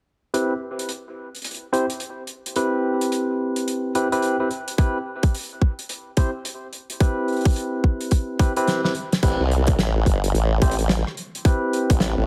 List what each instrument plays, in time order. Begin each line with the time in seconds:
0.34 tine electric piano C4 E4 G4 B4, closed hi-hat
0.79 closed hi-hat
0.89 closed hi-hat
1.35 closed hi-hat
1.42 closed hi-hat
1.44 closed hi-hat
1.51 closed hi-hat
1.54 closed hi-hat
1.73 tine electric piano C4 E4 G4 C5, closed hi-hat
1.90 closed hi-hat
2.00 closed hi-hat
2.27 closed hi-hat
2.46 closed hi-hat
2.56 tine electric piano C4 E4 G4 B4, closed hi-hat
3.01 closed hi-hat
3.12 closed hi-hat
3.56 closed hi-hat
3.68 closed hi-hat
3.95 tine electric piano C4 E4 G4 B4, closed hi-hat
4.12 tine electric piano C4 E4 G4 B4, closed hi-hat
4.22 closed hi-hat
4.40 tine electric piano C4 E4 G4 B4
4.51 closed hi-hat
4.68 closed hi-hat
4.78 tine electric piano C4 E4 G4 B4, kick, closed hi-hat
5.23 kick, closed hi-hat
5.35 closed hi-hat
5.37 closed hi-hat
5.40 closed hi-hat
5.43 closed hi-hat
5.49 closed hi-hat
5.62 kick
5.79 closed hi-hat
5.89 closed hi-hat
6.17 tine electric piano C4 E4 G4 C5, kick, closed hi-hat
6.45 closed hi-hat
6.73 closed hi-hat
6.90 closed hi-hat
7.00 tine electric piano C4 E4 G4 B4, kick, closed hi-hat
7.28 closed hi-hat
7.32 closed hi-hat
7.37 closed hi-hat
7.41 closed hi-hat
7.45 kick, closed hi-hat
7.48 closed hi-hat
7.50 closed hi-hat
7.53 closed hi-hat
7.56 closed hi-hat
7.84 kick
8.01 closed hi-hat
8.11 kick, closed hi-hat
8.39 tine electric piano C4 E4 G4 B4, kick, closed hi-hat
8.56 tine electric piano C4 E4 G4 B4, closed hi-hat
8.67 snare, closed hi-hat
8.84 tine electric piano C4 E4 G4 B4, snare
8.95 closed hi-hat
9.12 snare, closed hi-hat
9.23 wobble bass A1, tine electric piano C4 E4 G4 B4, kick, closed hi-hat, crash
9.40 wobble bass C2
9.51 closed hi-hat
9.67 kick, closed hi-hat
9.78 wobble bass A1, snare, closed hi-hat
10.06 wobble bass G1, kick, closed hi-hat
10.24 closed hi-hat
10.34 wobble bass A1, closed hi-hat
10.62 wobble bass A1, tine electric piano C4 E4 G4 C5, kick, closed hi-hat
10.71 closed hi-hat
10.79 closed hi-hat
10.89 snare, closed hi-hat
11.07 cross-stick
11.17 closed hi-hat
11.35 closed hi-hat
11.45 tine electric piano C4 E4 G4 B4, kick, closed hi-hat
11.73 closed hi-hat
11.90 wobble bass A1, kick, closed hi-hat
12.00 snare, closed hi-hat
12.18 wobble bass A1